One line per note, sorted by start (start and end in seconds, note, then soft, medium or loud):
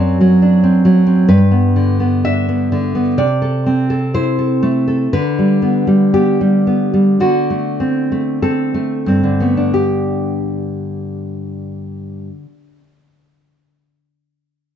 0.00 1.24 F#2 medium
0.00 0.19 F#3 medium
0.00 0.62 C4 soft
0.00 0.38 D5 medium
0.21 0.84 F#3 medium
0.42 1.29 D4 medium
0.64 1.05 C4 medium
0.85 1.29 F#3 medium
1.07 1.29 C4 medium
1.29 3.14 G2 medium
1.29 2.21 B4 medium
1.51 1.99 B3 soft
1.76 2.71 D3 soft
2.00 2.48 B3 medium
2.24 3.18 D4 medium
2.24 3.14 E5 medium
2.49 2.94 B3 medium
2.72 3.18 D3 soft
2.95 3.18 B3 soft
3.18 5.07 C3 medium
3.18 4.09 D5 medium
3.42 3.89 A4 soft
3.66 5.11 C4 soft
3.90 4.37 A4 medium
4.14 5.12 E4 soft
4.14 5.08 C5 medium
4.39 4.86 A4 soft
4.63 5.11 A3 medium
4.88 5.12 A4 soft
5.13 7.17 D3 medium
5.13 6.10 B4 medium
5.39 5.86 G3 soft
5.62 6.13 B3 soft
5.87 6.40 G3 soft
6.14 6.66 B3 soft
6.14 7.17 G4 medium
6.41 6.92 G3 soft
6.67 7.21 B3 soft
6.94 7.21 G3 soft
7.20 9.22 D3 medium
7.20 8.37 F#4 medium
7.50 8.11 A3 soft
7.80 8.41 C4 soft
8.12 8.73 A3 soft
8.42 9.07 C4 soft
8.42 9.71 A4 medium
8.74 9.40 A3 soft
9.06 12.28 G2 medium
9.06 9.57 C4 soft
9.23 12.45 D3 soft
9.40 9.75 A3 soft
9.40 12.62 B3 soft
9.57 12.79 D4 soft
9.74 12.96 G4 medium